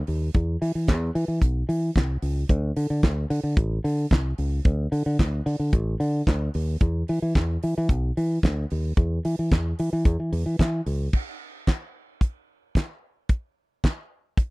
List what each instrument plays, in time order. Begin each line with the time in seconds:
0.07 fingered electric bass D#2, open hi-hat
0.34 fingered electric bass E2, kick, closed hi-hat
0.62 fingered electric bass E3, open hi-hat
0.75 fingered electric bass E3
0.88 fingered electric bass E2, kick, snare, clap, closed hi-hat
1.15 fingered electric bass E3, open hi-hat
1.28 fingered electric bass E3
1.42 fingered electric bass B1, kick, closed hi-hat
1.69 fingered electric bass E3, open hi-hat
1.96 fingered electric bass C2, kick, snare, clap, closed hi-hat
2.22 fingered electric bass C#2, open hi-hat
2.49 fingered electric bass D2, kick, closed hi-hat
2.76 fingered electric bass D3, open hi-hat
2.90 fingered electric bass D3
3.03 fingered electric bass D2, kick, snare, clap, closed hi-hat
3.30 fingered electric bass D3, open hi-hat
3.43 fingered electric bass D3
3.57 fingered electric bass A1, kick, closed hi-hat
3.84 fingered electric bass D3, open hi-hat
4.11 fingered electric bass C2, kick, snare, clap, closed hi-hat
4.38 fingered electric bass C#2, open hi-hat
4.65 fingered electric bass D2, kick, closed hi-hat
4.92 fingered electric bass D3, open hi-hat
5.06 fingered electric bass D3
5.19 fingered electric bass D2, kick, snare, clap, closed hi-hat
5.46 fingered electric bass D3, open hi-hat
5.60 fingered electric bass D3
5.73 fingered electric bass A1, kick, closed hi-hat
6.00 fingered electric bass D3, open hi-hat
6.27 fingered electric bass D2, kick, snare, clap, closed hi-hat
6.54 fingered electric bass D#2, open hi-hat
6.81 fingered electric bass E2, kick, closed hi-hat
7.08 fingered electric bass E3, open hi-hat
7.22 fingered electric bass E3
7.35 fingered electric bass E2, kick, snare, clap, closed hi-hat
7.63 fingered electric bass E3, open hi-hat
7.78 fingered electric bass E3
7.89 fingered electric bass B1, kick, closed hi-hat
8.17 fingered electric bass E3, open hi-hat
8.43 fingered electric bass D2, kick, snare, clap, closed hi-hat
8.70 fingered electric bass D#2, open hi-hat
8.97 fingered electric bass E2, kick, closed hi-hat
9.25 fingered electric bass E3, open hi-hat
9.39 fingered electric bass E3
9.52 fingered electric bass E2, kick, snare, clap, closed hi-hat
9.79 fingered electric bass E3, open hi-hat
9.93 fingered electric bass E3
10.05 fingered electric bass E2, kick, closed hi-hat
10.20 fingered electric bass E3
10.32 fingered electric bass E2, open hi-hat
10.46 fingered electric bass E3
10.59 fingered electric bass E3, kick, snare, clap, closed hi-hat
10.86 fingered electric bass C#2, open hi-hat
11.13 kick, crash
11.67 kick, snare, clap, closed hi-hat
12.21 kick, closed hi-hat
12.75 kick, snare, clap, closed hi-hat
13.29 kick, closed hi-hat
13.84 kick, snare, clap, closed hi-hat
14.37 kick, closed hi-hat